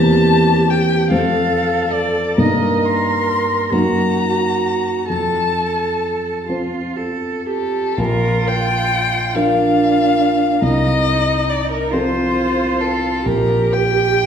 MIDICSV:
0, 0, Header, 1, 4, 480
1, 0, Start_track
1, 0, Tempo, 820793
1, 888, Tempo, 887574
1, 1363, Time_signature, 6, 3, 24, 8
1, 2328, Tempo, 927357
1, 3768, Tempo, 1018676
1, 4248, Tempo, 943396
1, 4728, Tempo, 854701
1, 6648, Tempo, 907716
1, 7662, End_track
2, 0, Start_track
2, 0, Title_t, "Violin"
2, 0, Program_c, 0, 40
2, 0, Note_on_c, 0, 81, 91
2, 409, Note_on_c, 0, 79, 80
2, 418, Note_off_c, 0, 81, 0
2, 645, Note_off_c, 0, 79, 0
2, 648, Note_on_c, 0, 77, 80
2, 1112, Note_on_c, 0, 74, 70
2, 1120, Note_off_c, 0, 77, 0
2, 1358, Note_on_c, 0, 75, 65
2, 1367, Note_off_c, 0, 74, 0
2, 1611, Note_on_c, 0, 84, 81
2, 1619, Note_off_c, 0, 75, 0
2, 2083, Note_on_c, 0, 82, 73
2, 2091, Note_off_c, 0, 84, 0
2, 2800, Note_off_c, 0, 82, 0
2, 2803, Note_on_c, 0, 81, 74
2, 3509, Note_off_c, 0, 81, 0
2, 4007, Note_on_c, 0, 69, 69
2, 4249, Note_on_c, 0, 70, 89
2, 4256, Note_off_c, 0, 69, 0
2, 4498, Note_on_c, 0, 79, 93
2, 4505, Note_off_c, 0, 70, 0
2, 4966, Note_on_c, 0, 77, 86
2, 4975, Note_off_c, 0, 79, 0
2, 5686, Note_on_c, 0, 75, 97
2, 5694, Note_off_c, 0, 77, 0
2, 6172, Note_on_c, 0, 74, 80
2, 6181, Note_off_c, 0, 75, 0
2, 6290, Note_off_c, 0, 74, 0
2, 6299, Note_on_c, 0, 70, 77
2, 6415, Note_on_c, 0, 72, 82
2, 6423, Note_off_c, 0, 70, 0
2, 6893, Note_on_c, 0, 69, 74
2, 6901, Note_off_c, 0, 72, 0
2, 7132, Note_on_c, 0, 70, 83
2, 7140, Note_off_c, 0, 69, 0
2, 7381, Note_on_c, 0, 79, 89
2, 7389, Note_off_c, 0, 70, 0
2, 7662, Note_off_c, 0, 79, 0
2, 7662, End_track
3, 0, Start_track
3, 0, Title_t, "Cello"
3, 0, Program_c, 1, 42
3, 0, Note_on_c, 1, 67, 74
3, 648, Note_on_c, 1, 69, 76
3, 657, Note_off_c, 1, 67, 0
3, 1352, Note_off_c, 1, 69, 0
3, 1355, Note_on_c, 1, 70, 73
3, 2078, Note_on_c, 1, 66, 65
3, 2086, Note_off_c, 1, 70, 0
3, 2801, Note_off_c, 1, 66, 0
3, 2806, Note_on_c, 1, 69, 60
3, 3463, Note_off_c, 1, 69, 0
3, 3517, Note_on_c, 1, 65, 54
3, 3767, Note_on_c, 1, 69, 57
3, 3774, Note_off_c, 1, 65, 0
3, 4002, Note_on_c, 1, 67, 50
3, 4009, Note_off_c, 1, 69, 0
3, 4243, Note_off_c, 1, 67, 0
3, 4246, Note_on_c, 1, 65, 79
3, 4971, Note_on_c, 1, 62, 75
3, 4979, Note_off_c, 1, 65, 0
3, 5678, Note_off_c, 1, 62, 0
3, 5682, Note_on_c, 1, 63, 70
3, 6405, Note_on_c, 1, 65, 76
3, 6413, Note_off_c, 1, 63, 0
3, 7128, Note_off_c, 1, 65, 0
3, 7131, Note_on_c, 1, 67, 80
3, 7662, Note_off_c, 1, 67, 0
3, 7662, End_track
4, 0, Start_track
4, 0, Title_t, "Grand piano"
4, 0, Program_c, 2, 0
4, 0, Note_on_c, 2, 40, 61
4, 0, Note_on_c, 2, 58, 44
4, 0, Note_on_c, 2, 60, 44
4, 0, Note_on_c, 2, 72, 45
4, 39, Control_c, 2, 64, 127
4, 624, Note_off_c, 2, 58, 0
4, 625, Note_off_c, 2, 40, 0
4, 625, Note_off_c, 2, 60, 0
4, 628, Note_off_c, 2, 72, 0
4, 644, Note_on_c, 2, 41, 60
4, 648, Note_on_c, 2, 57, 45
4, 648, Note_on_c, 2, 60, 41
4, 654, Note_on_c, 2, 72, 44
4, 659, Control_c, 2, 64, 0
4, 745, Control_c, 2, 64, 127
4, 1340, Note_off_c, 2, 41, 0
4, 1340, Note_off_c, 2, 57, 0
4, 1341, Note_off_c, 2, 60, 0
4, 1344, Note_off_c, 2, 72, 0
4, 1353, Note_on_c, 2, 58, 44
4, 1354, Note_on_c, 2, 43, 58
4, 1356, Note_on_c, 2, 63, 41
4, 1357, Note_on_c, 2, 70, 41
4, 1372, Control_c, 2, 64, 0
4, 1468, Control_c, 2, 64, 127
4, 2059, Note_off_c, 2, 43, 0
4, 2059, Note_off_c, 2, 58, 0
4, 2060, Note_off_c, 2, 63, 0
4, 2061, Note_off_c, 2, 70, 0
4, 2077, Note_on_c, 2, 42, 55
4, 2080, Note_on_c, 2, 58, 39
4, 2084, Note_on_c, 2, 70, 38
4, 2085, Note_on_c, 2, 63, 38
4, 2095, Control_c, 2, 64, 0
4, 2198, Control_c, 2, 64, 127
4, 2780, Note_off_c, 2, 42, 0
4, 2782, Note_off_c, 2, 58, 0
4, 2784, Note_off_c, 2, 63, 0
4, 2784, Note_off_c, 2, 70, 0
4, 2802, Note_on_c, 2, 41, 50
4, 2816, Control_c, 2, 64, 0
4, 2912, Control_c, 2, 64, 127
4, 3502, Note_off_c, 2, 41, 0
4, 3523, Note_on_c, 2, 53, 39
4, 3524, Note_on_c, 2, 60, 37
4, 3526, Note_on_c, 2, 72, 41
4, 4229, Note_off_c, 2, 53, 0
4, 4229, Note_off_c, 2, 60, 0
4, 4230, Note_off_c, 2, 72, 0
4, 4245, Note_on_c, 2, 34, 66
4, 4259, Control_c, 2, 64, 0
4, 4370, Control_c, 2, 64, 127
4, 4940, Note_off_c, 2, 34, 0
4, 4967, Note_on_c, 2, 53, 47
4, 4970, Note_on_c, 2, 62, 48
4, 4973, Note_on_c, 2, 70, 52
4, 5660, Note_off_c, 2, 53, 0
4, 5661, Note_off_c, 2, 62, 0
4, 5663, Note_off_c, 2, 70, 0
4, 5678, Note_on_c, 2, 36, 64
4, 5692, Control_c, 2, 64, 0
4, 5788, Control_c, 2, 64, 127
4, 6384, Note_off_c, 2, 36, 0
4, 6414, Note_on_c, 2, 53, 48
4, 6417, Note_on_c, 2, 60, 47
4, 6421, Note_on_c, 2, 69, 51
4, 7113, Note_off_c, 2, 53, 0
4, 7115, Note_off_c, 2, 60, 0
4, 7117, Note_off_c, 2, 69, 0
4, 7130, Note_on_c, 2, 34, 66
4, 7143, Control_c, 2, 64, 0
4, 7227, Control_c, 2, 64, 127
4, 7662, Note_off_c, 2, 34, 0
4, 7662, End_track
0, 0, End_of_file